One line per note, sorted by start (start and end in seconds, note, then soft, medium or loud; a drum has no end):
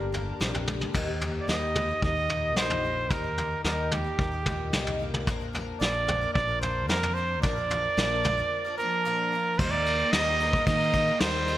0.00 0.30 G1 medium
0.00 0.95 G2 medium
0.00 0.41 D3 medium
0.00 0.11 G3 soft
0.00 0.91 G3 medium
0.00 0.12 A#3 soft
0.00 0.13 A#3 soft
0.00 0.13 D4 soft
0.00 0.95 D4 medium
0.00 0.13 G4 soft
0.00 0.41 A#4 medium
0.00 0.44 A#4 medium
0.12 0.40 G3 medium
0.12 0.40 A#3 medium
0.12 0.41 D4 medium
0.12 0.41 G4 medium
0.12 floor tom medium
0.40 0.84 A#1 medium
0.40 0.54 G2 medium
0.40 0.67 C3 medium
0.40 0.54 D3 medium
0.40 0.54 G3 medium
0.40 0.54 A#3 medium
0.40 0.53 D4 medium
0.40 0.52 G4 medium
0.40 snare medium
0.53 0.65 G3 soft
0.53 0.66 A#3 soft
0.53 0.67 D4 soft
0.53 0.67 G4 soft
0.53 floor tom medium
0.66 0.94 D3 soft
0.66 0.81 G3 soft
0.66 0.81 A#3 medium
0.66 0.80 D4 medium
0.66 0.79 G4 medium
0.66 mid tom medium
0.80 0.93 G3 soft
0.80 0.94 A#3 soft
0.80 0.95 D4 soft
0.80 0.94 G4 soft
0.80 mid tom medium
0.94 1.38 D#2 medium
0.94 1.08 D#3 medium
0.94 1.08 G3 medium
0.94 1.08 A#3 medium
0.94 1.08 D#4 medium
0.94 1.06 G4 medium
0.94 kick medium
0.94 floor tom medium
0.94 crash medium
1.07 1.20 A#3 soft
1.07 1.22 D#4 soft
1.07 1.21 G4 medium
1.20 1.47 G3 medium
1.20 1.47 A#3 medium
1.20 1.48 D#4 medium
1.20 1.49 G4 medium
1.20 floor tom medium
1.41 1.51 D5 medium
1.47 1.92 D#2 medium
1.47 1.75 D#3 medium
1.47 1.74 G3 medium
1.47 1.75 A#3 medium
1.47 1.76 D#4 medium
1.47 1.76 G4 medium
1.47 2.03 D#5 medium
1.47 snare medium
1.75 1.89 G3 medium
1.75 1.90 A#3 medium
1.75 1.89 D#4 medium
1.75 1.87 G4 medium
1.75 floor tom medium
1.75 mid tom medium
1.88 2.18 A#3 soft
1.88 2.16 D#4 soft
1.88 2.14 G4 soft
2.02 2.56 D#2 medium
2.02 2.84 A#3 medium
2.02 2.59 D#5 medium
2.02 kick medium
2.15 2.29 A#3 soft
2.15 2.30 D#4 soft
2.15 2.29 G4 soft
2.29 3.08 A#2 medium
2.29 2.56 G3 medium
2.29 2.56 A#3 medium
2.29 2.57 D#4 medium
2.29 2.57 G4 medium
2.29 floor tom medium
2.56 3.11 A#1 medium
2.56 2.84 D#3 medium
2.56 2.82 G3 medium
2.56 2.83 A#3 medium
2.56 2.84 D#4 medium
2.56 2.85 G4 medium
2.56 3.12 C5 medium
2.56 snare medium
2.70 floor tom medium
2.83 3.09 G3 soft
2.83 3.10 A#3 soft
2.83 3.11 D#4 medium
2.83 3.11 G4 soft
3.10 3.54 D#2 medium
3.10 3.24 D#3 medium
3.10 3.24 G3 medium
3.10 3.25 A#3 medium
3.10 3.24 D#4 medium
3.10 3.22 G4 medium
3.10 3.64 A#4 medium
3.10 kick loud
3.10 floor tom medium
3.24 3.38 A#3 soft
3.24 3.39 D#4 soft
3.24 3.38 G4 soft
3.37 3.64 G3 medium
3.37 3.65 A#3 medium
3.37 3.65 D#4 medium
3.37 3.66 G4 medium
3.37 floor tom medium
3.64 4.08 D#2 medium
3.64 3.92 D#3 medium
3.64 3.90 G3 medium
3.64 3.91 A#3 medium
3.64 3.92 D#4 medium
3.64 3.93 G4 medium
3.64 3.94 A#4 medium
3.64 snare medium
3.91 4.05 G3 medium
3.91 4.06 A#3 medium
3.91 4.05 D#4 medium
3.91 5.00 G4 medium
3.91 4.03 G4 medium
3.91 floor tom medium
3.91 mid tom medium
4.04 4.33 A#3 soft
4.04 4.32 D#4 soft
4.04 4.30 G4 soft
4.19 4.73 D#2 medium
4.19 5.00 A#3 medium
4.19 kick medium
4.32 4.45 A#3 soft
4.32 4.46 D#4 soft
4.32 4.46 G4 soft
4.46 5.24 A#2 medium
4.46 4.72 G3 medium
4.46 4.73 A#3 medium
4.46 4.73 D#4 medium
4.46 4.74 G4 medium
4.46 kick medium
4.46 floor tom medium
4.46 mid tom medium
4.73 5.27 C2 medium
4.73 5.00 D#3 medium
4.73 4.98 G3 medium
4.73 4.99 A#3 medium
4.73 5.01 D#4 medium
4.73 5.01 G4 medium
4.73 snare medium
4.73 mid tom medium
4.87 floor tom medium
4.99 5.27 G3 medium
4.99 5.27 A#3 medium
4.99 5.28 D#4 medium
4.99 5.28 G4 medium
5.14 mid tom medium
5.27 5.71 A#1 medium
5.27 5.41 A#2 medium
5.27 5.41 D3 medium
5.27 5.41 F3 medium
5.27 5.41 A#3 medium
5.27 5.40 D4 medium
5.27 5.39 A#4 medium
5.27 kick loud
5.27 floor tom medium
5.40 5.52 F3 soft
5.40 5.54 A#3 soft
5.40 5.54 D4 soft
5.40 5.54 A#4 medium
5.53 5.80 F3 medium
5.53 5.80 A#3 medium
5.53 5.80 D4 medium
5.53 5.81 A#4 medium
5.53 floor tom medium
5.80 6.25 A#1 medium
5.80 6.08 A#2 medium
5.80 6.08 D3 medium
5.80 6.06 F3 medium
5.80 6.07 A#3 medium
5.80 6.08 D4 medium
5.80 6.09 A#4 medium
5.80 6.31 D5 medium
5.80 snare medium
6.07 6.21 F3 medium
6.07 6.22 A#3 medium
6.07 6.21 D4 medium
6.07 6.20 A#4 medium
6.07 floor tom medium
6.07 mid tom medium
6.21 6.50 F3 soft
6.21 6.49 A#3 soft
6.21 6.48 D4 medium
6.21 6.47 A#4 medium
6.34 6.89 A#1 medium
6.34 6.60 D5 medium
6.34 kick medium
6.48 6.60 F3 soft
6.48 6.61 A#3 soft
6.48 6.62 D4 soft
6.48 6.62 A#4 medium
6.61 6.88 F3 medium
6.61 6.89 A#3 medium
6.61 6.89 D4 medium
6.61 6.90 A#4 medium
6.61 6.87 C5 medium
6.61 floor tom medium
6.88 7.43 F2 medium
6.88 7.16 A#2 medium
6.88 7.16 D3 medium
6.88 7.14 F3 medium
6.88 7.15 A#3 medium
6.88 7.16 D4 medium
6.88 7.16 A#4 medium
6.88 7.17 A#4 medium
6.88 snare medium
7.03 floor tom medium
7.14 7.42 F3 medium
7.14 7.43 A#3 medium
7.14 7.43 D4 medium
7.14 7.42 C5 medium
7.18 7.43 A#4 medium
7.42 7.87 A#1 medium
7.42 7.56 A#2 medium
7.42 7.57 D3 medium
7.42 7.57 F3 medium
7.42 7.57 A#3 medium
7.42 7.56 D4 medium
7.42 7.55 A#4 medium
7.42 8.74 D5 medium
7.42 kick loud
7.42 floor tom medium
7.56 7.69 F3 soft
7.56 7.70 A#3 soft
7.56 7.71 D4 medium
7.56 7.70 A#4 soft
7.70 7.97 F3 medium
7.70 7.97 A#3 medium
7.70 7.98 D4 medium
7.70 7.98 A#4 medium
7.70 floor tom medium
7.97 8.41 A#1 medium
7.97 8.24 A#2 medium
7.97 8.24 D3 medium
7.97 8.22 F3 medium
7.97 8.24 A#3 medium
7.97 8.25 D4 medium
7.97 8.25 A#4 medium
7.97 snare medium
8.23 8.37 F3 medium
8.23 8.38 A#3 medium
8.23 8.37 D4 medium
8.23 8.36 A#4 medium
8.23 floor tom medium
8.23 mid tom medium
8.37 8.66 F3 soft
8.37 8.66 A#3 medium
8.37 8.65 D4 soft
8.37 8.63 A#4 medium
8.65 8.77 F3 soft
8.65 8.78 A#3 medium
8.65 8.79 D4 medium
8.65 8.78 A#4 medium
8.78 9.05 F3 medium
8.78 9.61 F3 medium
8.78 9.05 A#3 medium
8.78 9.05 D4 medium
8.78 9.60 A#4 medium
8.78 9.06 A#4 medium
9.05 9.32 A#2 medium
9.05 9.32 D3 medium
9.05 9.31 F3 medium
9.05 9.32 A#3 medium
9.05 9.33 D4 medium
9.05 9.33 A#4 medium
9.32 9.59 F3 medium
9.32 9.59 A#3 medium
9.32 9.60 D4 medium
9.32 9.60 A#4 medium
9.59 10.02 D#2 medium
9.59 9.73 D#3 medium
9.59 9.74 G3 medium
9.59 9.73 G3 medium
9.59 9.73 A#3 medium
9.59 11.58 D#4 medium
9.59 9.73 D#4 medium
9.59 11.58 A#4 medium
9.59 9.71 A#4 medium
9.59 9.72 C5 medium
9.59 11.58 G5 medium
9.59 11.58 A#5 medium
9.59 kick loud
9.59 crash medium
9.71 10.12 A#3 medium
9.71 10.00 D#4 soft
9.71 9.98 A#4 medium
9.71 10.13 D5 loud
9.76 10.01 A#3 soft
9.86 ride medium
10.00 10.14 A#3 soft
10.00 10.14 D#4 soft
10.00 10.13 A#4 medium
10.12 10.56 D#2 medium
10.12 10.40 D#3 medium
10.12 10.39 G3 medium
10.12 10.66 A#3 medium
10.12 10.40 A#3 medium
10.12 10.41 D#4 medium
10.12 10.41 A#4 medium
10.12 10.66 D#5 medium
10.12 snare loud
10.12 ride medium
10.40 10.53 G3 medium
10.40 10.54 A#3 medium
10.40 10.54 D#4 medium
10.40 10.52 A#4 medium
10.40 ride medium
10.53 10.82 A#3 soft
10.53 10.81 D#4 soft
10.53 10.79 A#4 medium
10.53 kick medium
10.66 11.10 D#3 loud
10.66 11.23 A#3 medium
10.66 11.22 D#5 loud
10.66 kick loud
10.66 ride medium
10.81 10.93 A#3 soft
10.81 10.95 D#4 soft
10.81 10.94 A#4 medium
10.93 11.07 G3 medium
10.93 11.07 A#3 medium
10.93 11.08 D#4 medium
10.93 11.06 A#4 medium
10.93 kick medium
10.93 ride medium
11.07 11.21 A#3 soft
11.07 11.22 D#4 soft
11.07 11.21 A#4 soft
11.20 11.58 D#2 medium
11.20 11.47 D#3 medium
11.20 11.58 G3 medium
11.20 11.46 G3 medium
11.20 11.47 A#3 medium
11.20 11.48 D#4 medium
11.20 11.49 A#4 medium
11.20 11.58 C5 medium
11.20 snare loud
11.20 ride medium
11.48 11.58 G3 medium
11.48 11.58 A#3 medium
11.48 11.58 D#4 medium
11.48 11.58 A#4 medium
11.48 ride medium